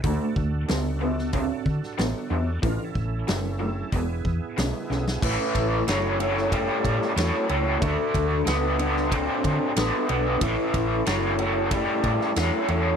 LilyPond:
<<
  \new Staff \with { instrumentName = "Tonewheel organ" } { \time 4/4 \key a \major \tempo 4 = 92 <d' fis' a'>1 | \tuplet 3/2 { <d' f' bes'>8 <cis' e' a'>4~ } <cis' e' a'>4 <b e' gis'>2 | <cis' e' a'>1 | <d' fis' a'>1 |
<cis' e' a'>1 | }
  \new Staff \with { instrumentName = "Overdriven electric guitar" } { \clef bass \time 4/4 \key a \major <d a>4 <d b>8 <d b>8 <d c'>4 <d b>8 <d b>8 | <a, e>4 <a, fis>8 <a, fis>8 <e, b,>4 <e, cis>8 <e, cis>8 | <a, e>4 <a, fis>8 <a, fis>8 <a, g>4 <a, fis>8 <a, fis>8 | <d a>4 <d b>8 <d b>8 <d c'>4 <d b>8 <d b>8 |
<a, e>4 <a, fis>8 <a, fis>8 <a, g>4 <a, fis>8 <a, fis>8 | }
  \new Staff \with { instrumentName = "Fingered electric bass" } { \clef bass \time 4/4 \key a \major d,16 r16 d,8 cis,4. d16 r16 a,,16 r16 e,8 | a,,16 r16 a,,8 fis,,4 e,,8 e,16 r16 b,,16 r16 b,,8 | a,,16 r16 a,,8 fis,,4. a,16 r16 e,16 r16 cis,8 | d,16 r16 d,8 cis,4. d16 r16 a,,16 r16 b,,8 |
a,,16 r16 a,,8 fis,,4. a,16 r16 e,16 r16 e,8 | }
  \new DrumStaff \with { instrumentName = "Drums" } \drummode { \time 4/4 <hho bd>8 bd8 <hho sn>8. sn16 <hho bd>8 bd16 sn16 <hho sn>4 | <hho bd>8 bd8 <hho sn>4 <hho bd>8 bd8 <hho sn>8 sn16 sn16 | <cymc bd>8 <bd cymr>8 <cymr sn>8 cymr16 sn16 <bd cymr>8 <bd cymr>16 sn16 <cymr sn>8 cymr8 | <bd cymr>8 <bd cymr>8 <cymr sn>8 cymr16 sn16 <bd cymr>8 <bd cymr>8 <cymr sn>8 cymr8 |
<bd cymr>8 <bd cymr>8 <cymr sn>8 cymr8 <bd cymr>8 <bd cymr>16 sn16 <cymr sn>8 cymr8 | }
>>